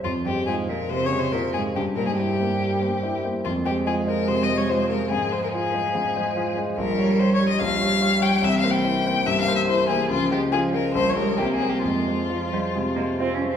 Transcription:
<<
  \new Staff \with { instrumentName = "Violin" } { \time 4/4 \key f \minor \tempo 4 = 143 f'8 g'8 aes'8 bes'8 \tuplet 3/2 { c''8 des''8 c''8 } bes'8 aes'8 | g'8 bes'16 aes'16 g'2~ g'8 r8 | f'8 g'8 aes'8 bes'8 \tuplet 3/2 { c''8 ees''8 des''8 } c''8 bes'8 | aes'8 c''16 bes'16 aes'2~ aes'8 r8 |
bes'4 \tuplet 3/2 { c''8 des''8 ees''8 } f''4. g''8 | \tuplet 3/2 { e''8 f''8 g''8~ } g''4 \tuplet 3/2 { e''8 f''8 e''8 } c''8 aes'8 | f'8 g'8 aes'8 bes'8 \tuplet 3/2 { c''8 des''16 bes'8. g'8 aes'8 g'8 } | f'2.~ f'8 r8 | }
  \new Staff \with { instrumentName = "Grand piano" } { \time 4/4 \key f \minor f,8 <aes c''>8 <f' c''>8 <aes c''>8 c8 <aes c''>8 <f' c''>8 <aes c''>8 | g,8 <bes c''>8 <e' c''>8 <bes c''>8 g8 <bes c''>8 <e' c''>8 <bes c''>8 | f,8 <aes c''>8 <f' c''>8 <aes c''>8 c8 <aes c''>8 <f' c''>8 <aes c''>8 | aes,8 <aes c''>8 <f' c''>8 <aes c''>8 aes,8 <aes c''>8 <f' c''>8 <aes c''>8 |
bes,,8 <g des''>8 <g' des''>8 <g des''>8 bes,,8 <g des''>8 <g' des''>8 <g des''>8 | c,8 <bes c''>8 <e' c''>8 <bes c''>8 g,8 <bes c''>8 <e' c''>8 <bes c''>8 | des,8 <aes c''>8 <f' c''>8 <aes c''>8 bes,,8 <g des''>8 c,8 <bes c''>8 | f,8 <aes c''>8 <f' c''>8 <aes c''>8 c8 <aes c''>8 <f' c''>8 <aes c''>8 | }
  \new Staff \with { instrumentName = "Cello" } { \clef bass \time 4/4 \key f \minor f,8 g,8 aes,8 bes,8 \tuplet 3/2 { c8 des8 c8 } bes,8 aes,8 | g,8 bes,16 aes,16 g,2~ g,8 r8 | aes1 | f1 |
g2 g2 | e2 e4 e4 | f4 f4 g8 aes8 bes4 | aes4 f8 g8 aes8 bes8 \tuplet 3/2 { c'8 des'8 c'8 } | }
>>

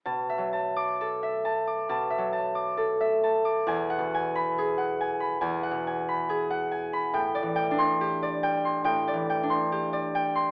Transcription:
<<
  \new Staff \with { instrumentName = "Harp" } { \time 4/4 \key b \dorian \tempo 4 = 69 << { r8. d'''2.~ d'''16 | r8. b''2.~ b''16~ | b''8. c'''2.~ c'''16 | } \\ { a''16 e''16 a''8 a'16 e''16 a''16 d'''16 a''16 e''16 a''16 d'''16 a'16 e''16 a''16 d'''16 | gis''16 fis''16 gis''8 gis'16 fis''16 gis''16 b''16 gis''16 fis''16 gis''16 b''16 gis'16 fis''16 gis''16 b''16 | g''16 d''16 g''8 g'16 d''16 g''16 c'''16 g''16 d''16 g''16 c'''16 g'16 d''16 g''16 c'''16 | } >> }
  \new Staff \with { instrumentName = "Harp" } { \clef bass \time 4/4 \key b \dorian \tuplet 3/2 { b,8 fis4~ } fis4 \tuplet 3/2 { b,8 fis4~ } fis4 | \tuplet 3/2 { e,8 b,4~ } b,4 \tuplet 3/2 { e,8 b,4~ } b,4 | \tuplet 3/2 { a,8 e8 d'8~ } d'4 \tuplet 3/2 { a,8 e8 d'8~ } d'4 | }
>>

